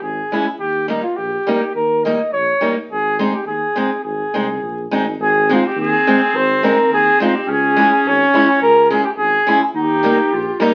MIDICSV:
0, 0, Header, 1, 5, 480
1, 0, Start_track
1, 0, Key_signature, -4, "major"
1, 0, Tempo, 575264
1, 501, Time_signature, 2, 2, 24, 8
1, 4817, Tempo, 568182
1, 9013, End_track
2, 0, Start_track
2, 0, Title_t, "Flugelhorn"
2, 0, Program_c, 0, 56
2, 20, Note_on_c, 0, 68, 69
2, 357, Note_off_c, 0, 68, 0
2, 498, Note_on_c, 0, 67, 82
2, 726, Note_off_c, 0, 67, 0
2, 748, Note_on_c, 0, 63, 72
2, 852, Note_off_c, 0, 63, 0
2, 857, Note_on_c, 0, 65, 71
2, 971, Note_on_c, 0, 67, 79
2, 983, Note_off_c, 0, 65, 0
2, 1459, Note_off_c, 0, 67, 0
2, 1464, Note_on_c, 0, 70, 83
2, 1690, Note_off_c, 0, 70, 0
2, 1708, Note_on_c, 0, 75, 77
2, 1928, Note_off_c, 0, 75, 0
2, 1943, Note_on_c, 0, 73, 92
2, 2278, Note_off_c, 0, 73, 0
2, 2432, Note_on_c, 0, 68, 88
2, 2651, Note_off_c, 0, 68, 0
2, 2773, Note_on_c, 0, 67, 72
2, 2887, Note_off_c, 0, 67, 0
2, 2892, Note_on_c, 0, 68, 79
2, 3340, Note_off_c, 0, 68, 0
2, 3376, Note_on_c, 0, 68, 69
2, 4067, Note_off_c, 0, 68, 0
2, 4355, Note_on_c, 0, 68, 94
2, 4618, Note_on_c, 0, 65, 79
2, 4630, Note_off_c, 0, 68, 0
2, 4729, Note_on_c, 0, 67, 83
2, 4742, Note_off_c, 0, 65, 0
2, 4833, Note_off_c, 0, 67, 0
2, 4844, Note_on_c, 0, 68, 89
2, 5310, Note_on_c, 0, 72, 87
2, 5323, Note_off_c, 0, 68, 0
2, 5549, Note_on_c, 0, 70, 81
2, 5562, Note_off_c, 0, 72, 0
2, 5783, Note_off_c, 0, 70, 0
2, 5796, Note_on_c, 0, 68, 110
2, 6013, Note_off_c, 0, 68, 0
2, 6035, Note_on_c, 0, 65, 78
2, 6152, Note_on_c, 0, 67, 79
2, 6165, Note_off_c, 0, 65, 0
2, 6283, Note_on_c, 0, 68, 100
2, 6296, Note_off_c, 0, 67, 0
2, 6766, Note_on_c, 0, 73, 96
2, 6778, Note_off_c, 0, 68, 0
2, 7217, Note_off_c, 0, 73, 0
2, 7223, Note_on_c, 0, 70, 108
2, 7443, Note_off_c, 0, 70, 0
2, 7463, Note_on_c, 0, 68, 78
2, 7570, Note_off_c, 0, 68, 0
2, 7581, Note_on_c, 0, 67, 75
2, 7633, Note_off_c, 0, 67, 0
2, 7690, Note_on_c, 0, 68, 98
2, 8029, Note_off_c, 0, 68, 0
2, 8184, Note_on_c, 0, 67, 88
2, 8887, Note_off_c, 0, 67, 0
2, 9013, End_track
3, 0, Start_track
3, 0, Title_t, "Clarinet"
3, 0, Program_c, 1, 71
3, 4359, Note_on_c, 1, 60, 122
3, 6235, Note_off_c, 1, 60, 0
3, 6255, Note_on_c, 1, 61, 127
3, 7901, Note_off_c, 1, 61, 0
3, 8175, Note_on_c, 1, 63, 104
3, 8665, Note_on_c, 1, 65, 98
3, 8678, Note_off_c, 1, 63, 0
3, 8894, Note_on_c, 1, 63, 85
3, 8907, Note_off_c, 1, 65, 0
3, 9013, Note_off_c, 1, 63, 0
3, 9013, End_track
4, 0, Start_track
4, 0, Title_t, "Steel-string acoustic guitar"
4, 0, Program_c, 2, 25
4, 266, Note_on_c, 2, 56, 43
4, 271, Note_on_c, 2, 61, 43
4, 278, Note_on_c, 2, 64, 56
4, 371, Note_off_c, 2, 56, 0
4, 374, Note_off_c, 2, 61, 0
4, 378, Note_off_c, 2, 64, 0
4, 735, Note_on_c, 2, 55, 60
4, 746, Note_on_c, 2, 58, 53
4, 750, Note_on_c, 2, 63, 42
4, 848, Note_off_c, 2, 55, 0
4, 854, Note_off_c, 2, 58, 0
4, 854, Note_off_c, 2, 63, 0
4, 1224, Note_on_c, 2, 55, 45
4, 1231, Note_on_c, 2, 58, 44
4, 1239, Note_on_c, 2, 63, 58
4, 1333, Note_off_c, 2, 55, 0
4, 1336, Note_off_c, 2, 58, 0
4, 1340, Note_off_c, 2, 63, 0
4, 1710, Note_on_c, 2, 55, 49
4, 1717, Note_on_c, 2, 58, 42
4, 1724, Note_on_c, 2, 63, 71
4, 1815, Note_off_c, 2, 55, 0
4, 1818, Note_off_c, 2, 58, 0
4, 1822, Note_off_c, 2, 63, 0
4, 2176, Note_on_c, 2, 55, 52
4, 2181, Note_on_c, 2, 58, 50
4, 2187, Note_on_c, 2, 63, 53
4, 2287, Note_off_c, 2, 55, 0
4, 2290, Note_off_c, 2, 58, 0
4, 2293, Note_off_c, 2, 63, 0
4, 2663, Note_on_c, 2, 56, 65
4, 2667, Note_on_c, 2, 60, 43
4, 2675, Note_on_c, 2, 63, 60
4, 2769, Note_off_c, 2, 56, 0
4, 2771, Note_off_c, 2, 60, 0
4, 2775, Note_off_c, 2, 63, 0
4, 3135, Note_on_c, 2, 56, 54
4, 3142, Note_on_c, 2, 60, 53
4, 3148, Note_on_c, 2, 63, 60
4, 3244, Note_off_c, 2, 56, 0
4, 3247, Note_off_c, 2, 60, 0
4, 3250, Note_off_c, 2, 63, 0
4, 3620, Note_on_c, 2, 56, 49
4, 3623, Note_on_c, 2, 60, 43
4, 3631, Note_on_c, 2, 63, 49
4, 3727, Note_off_c, 2, 56, 0
4, 3729, Note_off_c, 2, 60, 0
4, 3730, Note_off_c, 2, 63, 0
4, 4100, Note_on_c, 2, 56, 58
4, 4105, Note_on_c, 2, 60, 52
4, 4112, Note_on_c, 2, 63, 60
4, 4208, Note_off_c, 2, 56, 0
4, 4209, Note_off_c, 2, 60, 0
4, 4214, Note_off_c, 2, 63, 0
4, 4584, Note_on_c, 2, 56, 59
4, 4591, Note_on_c, 2, 60, 57
4, 4595, Note_on_c, 2, 63, 71
4, 4689, Note_off_c, 2, 56, 0
4, 4690, Note_off_c, 2, 60, 0
4, 4695, Note_off_c, 2, 63, 0
4, 5070, Note_on_c, 2, 56, 59
4, 5072, Note_on_c, 2, 60, 61
4, 5079, Note_on_c, 2, 63, 58
4, 5173, Note_off_c, 2, 56, 0
4, 5175, Note_off_c, 2, 60, 0
4, 5176, Note_off_c, 2, 63, 0
4, 5542, Note_on_c, 2, 56, 58
4, 5547, Note_on_c, 2, 60, 61
4, 5554, Note_on_c, 2, 63, 67
4, 5649, Note_off_c, 2, 56, 0
4, 5651, Note_off_c, 2, 60, 0
4, 5655, Note_off_c, 2, 63, 0
4, 6024, Note_on_c, 2, 56, 67
4, 6032, Note_on_c, 2, 60, 48
4, 6038, Note_on_c, 2, 63, 70
4, 6130, Note_off_c, 2, 56, 0
4, 6134, Note_off_c, 2, 60, 0
4, 6137, Note_off_c, 2, 63, 0
4, 6500, Note_on_c, 2, 56, 66
4, 6509, Note_on_c, 2, 61, 52
4, 6519, Note_on_c, 2, 64, 60
4, 6607, Note_off_c, 2, 56, 0
4, 6613, Note_off_c, 2, 61, 0
4, 6614, Note_off_c, 2, 64, 0
4, 6983, Note_on_c, 2, 56, 57
4, 6990, Note_on_c, 2, 61, 54
4, 6994, Note_on_c, 2, 64, 66
4, 7086, Note_off_c, 2, 56, 0
4, 7090, Note_off_c, 2, 61, 0
4, 7092, Note_off_c, 2, 64, 0
4, 7462, Note_on_c, 2, 56, 65
4, 7468, Note_on_c, 2, 61, 55
4, 7477, Note_on_c, 2, 64, 56
4, 7566, Note_off_c, 2, 56, 0
4, 7569, Note_off_c, 2, 61, 0
4, 7571, Note_off_c, 2, 64, 0
4, 7937, Note_on_c, 2, 56, 59
4, 7943, Note_on_c, 2, 61, 55
4, 7951, Note_on_c, 2, 64, 69
4, 8045, Note_off_c, 2, 56, 0
4, 8048, Note_off_c, 2, 61, 0
4, 8052, Note_off_c, 2, 64, 0
4, 8413, Note_on_c, 2, 55, 57
4, 8419, Note_on_c, 2, 58, 58
4, 8426, Note_on_c, 2, 63, 69
4, 8524, Note_off_c, 2, 55, 0
4, 8527, Note_off_c, 2, 58, 0
4, 8531, Note_off_c, 2, 63, 0
4, 8894, Note_on_c, 2, 55, 77
4, 8903, Note_on_c, 2, 58, 56
4, 8910, Note_on_c, 2, 63, 77
4, 9004, Note_off_c, 2, 55, 0
4, 9010, Note_off_c, 2, 58, 0
4, 9011, Note_off_c, 2, 63, 0
4, 9013, End_track
5, 0, Start_track
5, 0, Title_t, "Tuba"
5, 0, Program_c, 3, 58
5, 10, Note_on_c, 3, 32, 71
5, 171, Note_off_c, 3, 32, 0
5, 493, Note_on_c, 3, 39, 61
5, 810, Note_off_c, 3, 39, 0
5, 980, Note_on_c, 3, 34, 70
5, 1139, Note_off_c, 3, 34, 0
5, 1457, Note_on_c, 3, 39, 73
5, 1771, Note_off_c, 3, 39, 0
5, 1940, Note_on_c, 3, 34, 64
5, 2098, Note_off_c, 3, 34, 0
5, 2419, Note_on_c, 3, 32, 71
5, 2730, Note_off_c, 3, 32, 0
5, 2885, Note_on_c, 3, 39, 60
5, 3046, Note_off_c, 3, 39, 0
5, 3370, Note_on_c, 3, 32, 72
5, 3530, Note_off_c, 3, 32, 0
5, 3618, Note_on_c, 3, 36, 79
5, 3833, Note_off_c, 3, 36, 0
5, 3850, Note_on_c, 3, 34, 72
5, 4072, Note_off_c, 3, 34, 0
5, 4091, Note_on_c, 3, 32, 75
5, 4310, Note_off_c, 3, 32, 0
5, 4327, Note_on_c, 3, 32, 101
5, 4643, Note_off_c, 3, 32, 0
5, 4800, Note_on_c, 3, 39, 99
5, 4964, Note_off_c, 3, 39, 0
5, 5289, Note_on_c, 3, 32, 86
5, 5605, Note_off_c, 3, 32, 0
5, 5766, Note_on_c, 3, 39, 78
5, 5928, Note_off_c, 3, 39, 0
5, 6249, Note_on_c, 3, 37, 84
5, 6563, Note_off_c, 3, 37, 0
5, 6735, Note_on_c, 3, 32, 87
5, 6892, Note_off_c, 3, 32, 0
5, 7212, Note_on_c, 3, 37, 89
5, 7525, Note_off_c, 3, 37, 0
5, 7691, Note_on_c, 3, 32, 76
5, 7850, Note_off_c, 3, 32, 0
5, 8168, Note_on_c, 3, 39, 80
5, 8484, Note_off_c, 3, 39, 0
5, 8657, Note_on_c, 3, 34, 77
5, 8815, Note_off_c, 3, 34, 0
5, 9013, End_track
0, 0, End_of_file